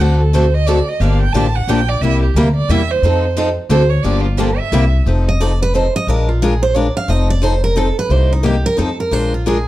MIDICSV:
0, 0, Header, 1, 5, 480
1, 0, Start_track
1, 0, Tempo, 337838
1, 1426, Time_signature, 3, 2, 24, 8
1, 13752, End_track
2, 0, Start_track
2, 0, Title_t, "Violin"
2, 0, Program_c, 0, 40
2, 5, Note_on_c, 0, 78, 83
2, 275, Note_off_c, 0, 78, 0
2, 284, Note_on_c, 0, 69, 69
2, 487, Note_on_c, 0, 72, 77
2, 508, Note_off_c, 0, 69, 0
2, 769, Note_on_c, 0, 75, 101
2, 790, Note_off_c, 0, 72, 0
2, 939, Note_on_c, 0, 74, 88
2, 961, Note_off_c, 0, 75, 0
2, 1251, Note_on_c, 0, 75, 87
2, 1272, Note_off_c, 0, 74, 0
2, 1432, Note_on_c, 0, 77, 80
2, 1453, Note_off_c, 0, 75, 0
2, 1718, Note_off_c, 0, 77, 0
2, 1727, Note_on_c, 0, 79, 97
2, 1882, Note_on_c, 0, 81, 99
2, 1903, Note_off_c, 0, 79, 0
2, 2207, Note_on_c, 0, 78, 96
2, 2228, Note_off_c, 0, 81, 0
2, 2403, Note_on_c, 0, 79, 102
2, 2424, Note_off_c, 0, 78, 0
2, 2680, Note_on_c, 0, 74, 89
2, 2701, Note_off_c, 0, 79, 0
2, 2857, Note_on_c, 0, 76, 103
2, 2879, Note_off_c, 0, 74, 0
2, 3153, Note_off_c, 0, 76, 0
2, 3161, Note_on_c, 0, 67, 67
2, 3355, Note_on_c, 0, 70, 86
2, 3376, Note_off_c, 0, 67, 0
2, 3627, Note_off_c, 0, 70, 0
2, 3636, Note_on_c, 0, 74, 96
2, 3840, Note_on_c, 0, 76, 107
2, 3861, Note_off_c, 0, 74, 0
2, 4130, Note_on_c, 0, 72, 92
2, 4151, Note_off_c, 0, 76, 0
2, 4790, Note_off_c, 0, 72, 0
2, 5267, Note_on_c, 0, 72, 102
2, 5532, Note_on_c, 0, 73, 88
2, 5553, Note_off_c, 0, 72, 0
2, 5720, Note_on_c, 0, 74, 101
2, 5742, Note_off_c, 0, 73, 0
2, 6011, Note_off_c, 0, 74, 0
2, 6019, Note_on_c, 0, 65, 45
2, 6217, Note_on_c, 0, 69, 80
2, 6238, Note_off_c, 0, 65, 0
2, 6506, Note_on_c, 0, 76, 92
2, 6527, Note_off_c, 0, 69, 0
2, 7085, Note_off_c, 0, 76, 0
2, 13752, End_track
3, 0, Start_track
3, 0, Title_t, "Steel-string acoustic guitar"
3, 0, Program_c, 1, 25
3, 7509, Note_on_c, 1, 75, 87
3, 7684, Note_off_c, 1, 75, 0
3, 7684, Note_on_c, 1, 74, 89
3, 7960, Note_off_c, 1, 74, 0
3, 7991, Note_on_c, 1, 71, 97
3, 8155, Note_off_c, 1, 71, 0
3, 8171, Note_on_c, 1, 72, 69
3, 8444, Note_off_c, 1, 72, 0
3, 8466, Note_on_c, 1, 75, 99
3, 8633, Note_off_c, 1, 75, 0
3, 8661, Note_on_c, 1, 74, 80
3, 8929, Note_off_c, 1, 74, 0
3, 8932, Note_on_c, 1, 65, 42
3, 9106, Note_off_c, 1, 65, 0
3, 9124, Note_on_c, 1, 68, 72
3, 9401, Note_off_c, 1, 68, 0
3, 9416, Note_on_c, 1, 72, 103
3, 9610, Note_off_c, 1, 72, 0
3, 9610, Note_on_c, 1, 74, 72
3, 9884, Note_off_c, 1, 74, 0
3, 9899, Note_on_c, 1, 77, 101
3, 10081, Note_off_c, 1, 77, 0
3, 10081, Note_on_c, 1, 75, 84
3, 10359, Note_off_c, 1, 75, 0
3, 10376, Note_on_c, 1, 74, 86
3, 10560, Note_off_c, 1, 74, 0
3, 10560, Note_on_c, 1, 72, 77
3, 10839, Note_off_c, 1, 72, 0
3, 10852, Note_on_c, 1, 70, 87
3, 11026, Note_off_c, 1, 70, 0
3, 11045, Note_on_c, 1, 69, 82
3, 11322, Note_off_c, 1, 69, 0
3, 11351, Note_on_c, 1, 71, 94
3, 11538, Note_off_c, 1, 71, 0
3, 11538, Note_on_c, 1, 72, 96
3, 11809, Note_off_c, 1, 72, 0
3, 11828, Note_on_c, 1, 63, 59
3, 11995, Note_off_c, 1, 63, 0
3, 12017, Note_on_c, 1, 67, 76
3, 12288, Note_off_c, 1, 67, 0
3, 12303, Note_on_c, 1, 70, 107
3, 12472, Note_off_c, 1, 70, 0
3, 12487, Note_on_c, 1, 69, 75
3, 12763, Note_off_c, 1, 69, 0
3, 12788, Note_on_c, 1, 70, 75
3, 12971, Note_off_c, 1, 70, 0
3, 12971, Note_on_c, 1, 72, 88
3, 13246, Note_off_c, 1, 72, 0
3, 13271, Note_on_c, 1, 65, 52
3, 13436, Note_off_c, 1, 65, 0
3, 13465, Note_on_c, 1, 68, 82
3, 13733, Note_off_c, 1, 68, 0
3, 13752, End_track
4, 0, Start_track
4, 0, Title_t, "Steel-string acoustic guitar"
4, 0, Program_c, 2, 25
4, 0, Note_on_c, 2, 50, 67
4, 1, Note_on_c, 2, 57, 68
4, 1, Note_on_c, 2, 60, 73
4, 9, Note_on_c, 2, 66, 76
4, 20, Note_on_c, 2, 69, 77
4, 286, Note_off_c, 2, 50, 0
4, 290, Note_off_c, 2, 57, 0
4, 290, Note_off_c, 2, 60, 0
4, 294, Note_off_c, 2, 66, 0
4, 299, Note_off_c, 2, 69, 0
4, 473, Note_on_c, 2, 50, 82
4, 478, Note_on_c, 2, 57, 83
4, 484, Note_on_c, 2, 60, 91
4, 489, Note_on_c, 2, 66, 94
4, 489, Note_on_c, 2, 69, 98
4, 627, Note_off_c, 2, 50, 0
4, 630, Note_off_c, 2, 57, 0
4, 632, Note_off_c, 2, 60, 0
4, 635, Note_off_c, 2, 66, 0
4, 635, Note_off_c, 2, 69, 0
4, 949, Note_on_c, 2, 50, 93
4, 957, Note_on_c, 2, 57, 94
4, 959, Note_on_c, 2, 60, 94
4, 968, Note_on_c, 2, 66, 97
4, 975, Note_on_c, 2, 69, 105
4, 1105, Note_off_c, 2, 50, 0
4, 1109, Note_off_c, 2, 57, 0
4, 1110, Note_off_c, 2, 60, 0
4, 1114, Note_off_c, 2, 66, 0
4, 1118, Note_off_c, 2, 69, 0
4, 1427, Note_on_c, 2, 50, 70
4, 1438, Note_on_c, 2, 53, 67
4, 1444, Note_on_c, 2, 58, 82
4, 1444, Note_on_c, 2, 62, 75
4, 1452, Note_on_c, 2, 67, 71
4, 1723, Note_off_c, 2, 50, 0
4, 1728, Note_off_c, 2, 53, 0
4, 1731, Note_off_c, 2, 62, 0
4, 1732, Note_off_c, 2, 58, 0
4, 1736, Note_off_c, 2, 67, 0
4, 1907, Note_on_c, 2, 53, 92
4, 1909, Note_on_c, 2, 50, 90
4, 1918, Note_on_c, 2, 62, 96
4, 1919, Note_on_c, 2, 58, 94
4, 1920, Note_on_c, 2, 67, 96
4, 2064, Note_off_c, 2, 53, 0
4, 2065, Note_off_c, 2, 50, 0
4, 2069, Note_off_c, 2, 62, 0
4, 2070, Note_off_c, 2, 58, 0
4, 2070, Note_off_c, 2, 67, 0
4, 2392, Note_on_c, 2, 50, 90
4, 2399, Note_on_c, 2, 53, 98
4, 2402, Note_on_c, 2, 58, 104
4, 2406, Note_on_c, 2, 62, 98
4, 2407, Note_on_c, 2, 67, 88
4, 2546, Note_off_c, 2, 50, 0
4, 2550, Note_off_c, 2, 53, 0
4, 2551, Note_off_c, 2, 58, 0
4, 2553, Note_off_c, 2, 62, 0
4, 2554, Note_off_c, 2, 67, 0
4, 2869, Note_on_c, 2, 48, 73
4, 2882, Note_on_c, 2, 55, 76
4, 2888, Note_on_c, 2, 58, 68
4, 2895, Note_on_c, 2, 64, 74
4, 2895, Note_on_c, 2, 67, 76
4, 3164, Note_off_c, 2, 48, 0
4, 3170, Note_off_c, 2, 55, 0
4, 3173, Note_off_c, 2, 58, 0
4, 3176, Note_off_c, 2, 67, 0
4, 3177, Note_off_c, 2, 64, 0
4, 3357, Note_on_c, 2, 48, 96
4, 3363, Note_on_c, 2, 55, 92
4, 3364, Note_on_c, 2, 58, 106
4, 3372, Note_on_c, 2, 64, 102
4, 3379, Note_on_c, 2, 67, 104
4, 3509, Note_off_c, 2, 48, 0
4, 3512, Note_off_c, 2, 55, 0
4, 3512, Note_off_c, 2, 58, 0
4, 3516, Note_off_c, 2, 64, 0
4, 3520, Note_off_c, 2, 67, 0
4, 3827, Note_on_c, 2, 48, 88
4, 3840, Note_on_c, 2, 58, 95
4, 3842, Note_on_c, 2, 55, 92
4, 3850, Note_on_c, 2, 67, 108
4, 3851, Note_on_c, 2, 64, 101
4, 3984, Note_off_c, 2, 48, 0
4, 3990, Note_off_c, 2, 58, 0
4, 3991, Note_off_c, 2, 55, 0
4, 3995, Note_off_c, 2, 64, 0
4, 3995, Note_off_c, 2, 67, 0
4, 4324, Note_on_c, 2, 53, 73
4, 4332, Note_on_c, 2, 60, 72
4, 4336, Note_on_c, 2, 63, 73
4, 4337, Note_on_c, 2, 69, 82
4, 4611, Note_off_c, 2, 53, 0
4, 4614, Note_off_c, 2, 60, 0
4, 4617, Note_off_c, 2, 63, 0
4, 4617, Note_off_c, 2, 69, 0
4, 4782, Note_on_c, 2, 53, 87
4, 4788, Note_on_c, 2, 60, 84
4, 4800, Note_on_c, 2, 63, 96
4, 4805, Note_on_c, 2, 69, 112
4, 4940, Note_off_c, 2, 53, 0
4, 4944, Note_off_c, 2, 60, 0
4, 4950, Note_off_c, 2, 63, 0
4, 4952, Note_off_c, 2, 69, 0
4, 5254, Note_on_c, 2, 50, 97
4, 5254, Note_on_c, 2, 57, 90
4, 5267, Note_on_c, 2, 60, 107
4, 5273, Note_on_c, 2, 66, 100
4, 5275, Note_on_c, 2, 69, 109
4, 5417, Note_off_c, 2, 50, 0
4, 5417, Note_off_c, 2, 57, 0
4, 5423, Note_off_c, 2, 60, 0
4, 5426, Note_off_c, 2, 66, 0
4, 5427, Note_off_c, 2, 69, 0
4, 5744, Note_on_c, 2, 50, 67
4, 5748, Note_on_c, 2, 53, 72
4, 5753, Note_on_c, 2, 58, 87
4, 5755, Note_on_c, 2, 67, 78
4, 5757, Note_on_c, 2, 62, 76
4, 6040, Note_off_c, 2, 50, 0
4, 6042, Note_off_c, 2, 53, 0
4, 6045, Note_off_c, 2, 58, 0
4, 6046, Note_off_c, 2, 67, 0
4, 6047, Note_off_c, 2, 62, 0
4, 6225, Note_on_c, 2, 50, 90
4, 6231, Note_on_c, 2, 53, 98
4, 6239, Note_on_c, 2, 58, 106
4, 6247, Note_on_c, 2, 62, 101
4, 6251, Note_on_c, 2, 67, 92
4, 6382, Note_off_c, 2, 50, 0
4, 6385, Note_off_c, 2, 53, 0
4, 6389, Note_off_c, 2, 58, 0
4, 6393, Note_off_c, 2, 62, 0
4, 6395, Note_off_c, 2, 67, 0
4, 6717, Note_on_c, 2, 48, 99
4, 6718, Note_on_c, 2, 55, 101
4, 6721, Note_on_c, 2, 58, 106
4, 6727, Note_on_c, 2, 64, 111
4, 6730, Note_on_c, 2, 67, 116
4, 6868, Note_off_c, 2, 48, 0
4, 6868, Note_off_c, 2, 55, 0
4, 6870, Note_off_c, 2, 58, 0
4, 6873, Note_off_c, 2, 64, 0
4, 6874, Note_off_c, 2, 67, 0
4, 7197, Note_on_c, 2, 53, 72
4, 7208, Note_on_c, 2, 60, 64
4, 7209, Note_on_c, 2, 63, 68
4, 7225, Note_on_c, 2, 69, 72
4, 7487, Note_off_c, 2, 53, 0
4, 7492, Note_off_c, 2, 60, 0
4, 7493, Note_off_c, 2, 63, 0
4, 7501, Note_off_c, 2, 69, 0
4, 7679, Note_on_c, 2, 53, 85
4, 7679, Note_on_c, 2, 60, 95
4, 7694, Note_on_c, 2, 69, 100
4, 7695, Note_on_c, 2, 63, 98
4, 7829, Note_off_c, 2, 53, 0
4, 7829, Note_off_c, 2, 60, 0
4, 7837, Note_off_c, 2, 63, 0
4, 7837, Note_off_c, 2, 69, 0
4, 8152, Note_on_c, 2, 53, 86
4, 8165, Note_on_c, 2, 60, 91
4, 8174, Note_on_c, 2, 63, 91
4, 8177, Note_on_c, 2, 69, 96
4, 8305, Note_off_c, 2, 53, 0
4, 8312, Note_off_c, 2, 60, 0
4, 8317, Note_off_c, 2, 63, 0
4, 8318, Note_off_c, 2, 69, 0
4, 8641, Note_on_c, 2, 53, 66
4, 8642, Note_on_c, 2, 56, 78
4, 8648, Note_on_c, 2, 62, 71
4, 8654, Note_on_c, 2, 65, 65
4, 8658, Note_on_c, 2, 70, 74
4, 8929, Note_off_c, 2, 53, 0
4, 8930, Note_off_c, 2, 56, 0
4, 8933, Note_off_c, 2, 62, 0
4, 8936, Note_off_c, 2, 65, 0
4, 8938, Note_off_c, 2, 70, 0
4, 9123, Note_on_c, 2, 53, 85
4, 9131, Note_on_c, 2, 56, 94
4, 9131, Note_on_c, 2, 65, 100
4, 9134, Note_on_c, 2, 62, 87
4, 9145, Note_on_c, 2, 70, 112
4, 9271, Note_off_c, 2, 53, 0
4, 9275, Note_off_c, 2, 56, 0
4, 9275, Note_off_c, 2, 65, 0
4, 9277, Note_off_c, 2, 62, 0
4, 9282, Note_off_c, 2, 70, 0
4, 9585, Note_on_c, 2, 53, 93
4, 9600, Note_on_c, 2, 56, 92
4, 9604, Note_on_c, 2, 65, 96
4, 9605, Note_on_c, 2, 62, 95
4, 9606, Note_on_c, 2, 70, 101
4, 9742, Note_off_c, 2, 53, 0
4, 9750, Note_off_c, 2, 56, 0
4, 9752, Note_off_c, 2, 62, 0
4, 9752, Note_off_c, 2, 65, 0
4, 9753, Note_off_c, 2, 70, 0
4, 10060, Note_on_c, 2, 53, 71
4, 10065, Note_on_c, 2, 60, 76
4, 10074, Note_on_c, 2, 63, 78
4, 10078, Note_on_c, 2, 69, 64
4, 10359, Note_off_c, 2, 53, 0
4, 10361, Note_off_c, 2, 60, 0
4, 10366, Note_off_c, 2, 63, 0
4, 10368, Note_off_c, 2, 69, 0
4, 10538, Note_on_c, 2, 53, 92
4, 10552, Note_on_c, 2, 60, 91
4, 10553, Note_on_c, 2, 63, 94
4, 10563, Note_on_c, 2, 69, 92
4, 10699, Note_off_c, 2, 53, 0
4, 10706, Note_off_c, 2, 60, 0
4, 10707, Note_off_c, 2, 63, 0
4, 10711, Note_off_c, 2, 69, 0
4, 11022, Note_on_c, 2, 53, 89
4, 11030, Note_on_c, 2, 60, 100
4, 11036, Note_on_c, 2, 63, 96
4, 11045, Note_on_c, 2, 69, 103
4, 11181, Note_off_c, 2, 53, 0
4, 11185, Note_off_c, 2, 60, 0
4, 11188, Note_off_c, 2, 63, 0
4, 11193, Note_off_c, 2, 69, 0
4, 11511, Note_on_c, 2, 48, 71
4, 11511, Note_on_c, 2, 58, 70
4, 11518, Note_on_c, 2, 55, 65
4, 11519, Note_on_c, 2, 63, 69
4, 11526, Note_on_c, 2, 67, 75
4, 11805, Note_off_c, 2, 48, 0
4, 11805, Note_off_c, 2, 58, 0
4, 11809, Note_off_c, 2, 55, 0
4, 11809, Note_off_c, 2, 63, 0
4, 11812, Note_off_c, 2, 67, 0
4, 11977, Note_on_c, 2, 48, 80
4, 11980, Note_on_c, 2, 58, 91
4, 11984, Note_on_c, 2, 55, 88
4, 11990, Note_on_c, 2, 63, 103
4, 11992, Note_on_c, 2, 67, 99
4, 12139, Note_off_c, 2, 48, 0
4, 12141, Note_off_c, 2, 58, 0
4, 12143, Note_off_c, 2, 55, 0
4, 12145, Note_off_c, 2, 63, 0
4, 12147, Note_off_c, 2, 67, 0
4, 12459, Note_on_c, 2, 53, 88
4, 12471, Note_on_c, 2, 60, 84
4, 12478, Note_on_c, 2, 63, 88
4, 12482, Note_on_c, 2, 69, 101
4, 12620, Note_off_c, 2, 53, 0
4, 12626, Note_off_c, 2, 60, 0
4, 12629, Note_off_c, 2, 63, 0
4, 12632, Note_off_c, 2, 69, 0
4, 12949, Note_on_c, 2, 53, 69
4, 12961, Note_on_c, 2, 56, 69
4, 12962, Note_on_c, 2, 62, 73
4, 12968, Note_on_c, 2, 65, 66
4, 12972, Note_on_c, 2, 70, 80
4, 13245, Note_off_c, 2, 53, 0
4, 13250, Note_off_c, 2, 56, 0
4, 13251, Note_off_c, 2, 62, 0
4, 13254, Note_off_c, 2, 65, 0
4, 13256, Note_off_c, 2, 70, 0
4, 13440, Note_on_c, 2, 53, 73
4, 13441, Note_on_c, 2, 56, 93
4, 13449, Note_on_c, 2, 70, 104
4, 13451, Note_on_c, 2, 62, 91
4, 13454, Note_on_c, 2, 65, 100
4, 13591, Note_off_c, 2, 53, 0
4, 13591, Note_off_c, 2, 56, 0
4, 13595, Note_off_c, 2, 70, 0
4, 13596, Note_off_c, 2, 62, 0
4, 13598, Note_off_c, 2, 65, 0
4, 13752, End_track
5, 0, Start_track
5, 0, Title_t, "Upright bass"
5, 0, Program_c, 3, 32
5, 0, Note_on_c, 3, 38, 91
5, 1135, Note_off_c, 3, 38, 0
5, 1419, Note_on_c, 3, 31, 85
5, 1806, Note_off_c, 3, 31, 0
5, 1893, Note_on_c, 3, 33, 72
5, 2307, Note_off_c, 3, 33, 0
5, 2379, Note_on_c, 3, 34, 88
5, 2790, Note_off_c, 3, 34, 0
5, 2853, Note_on_c, 3, 36, 81
5, 3242, Note_off_c, 3, 36, 0
5, 3324, Note_on_c, 3, 38, 81
5, 3741, Note_off_c, 3, 38, 0
5, 3813, Note_on_c, 3, 40, 89
5, 4226, Note_off_c, 3, 40, 0
5, 4293, Note_on_c, 3, 41, 84
5, 5065, Note_off_c, 3, 41, 0
5, 5248, Note_on_c, 3, 38, 94
5, 5638, Note_off_c, 3, 38, 0
5, 5738, Note_on_c, 3, 31, 90
5, 6508, Note_off_c, 3, 31, 0
5, 6704, Note_on_c, 3, 36, 96
5, 7088, Note_off_c, 3, 36, 0
5, 7187, Note_on_c, 3, 29, 82
5, 8338, Note_off_c, 3, 29, 0
5, 8625, Note_on_c, 3, 34, 81
5, 9777, Note_off_c, 3, 34, 0
5, 10061, Note_on_c, 3, 29, 81
5, 11215, Note_off_c, 3, 29, 0
5, 11496, Note_on_c, 3, 36, 81
5, 12268, Note_off_c, 3, 36, 0
5, 12473, Note_on_c, 3, 41, 85
5, 12855, Note_off_c, 3, 41, 0
5, 12948, Note_on_c, 3, 34, 76
5, 13752, Note_off_c, 3, 34, 0
5, 13752, End_track
0, 0, End_of_file